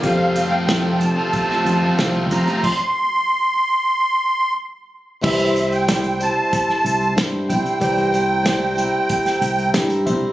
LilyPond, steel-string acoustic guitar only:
\new Staff \with { instrumentName = "Steel-string acoustic guitar" } { \time 4/4 \key c \major \tempo 4 = 93 <f g c' f' a'>8 <c' f' a'>8 <g c' f' a'>8 <c' f' a'>4. <g c' f' a'>8 <c' f'>8 | r1 | <c e g c' e' c''>8 <g c' e' c''>8 <g c' e' c''>8 <g c' e' c''>4. <g c' e' c''>8 <g c' e' c''>8 | <c e g c' e' c''>8 <g c' e' c''>8 <g c' e' c''>8 <g c' e' c''>4. <g c' e' c''>8 <g c' e' c''>8 | }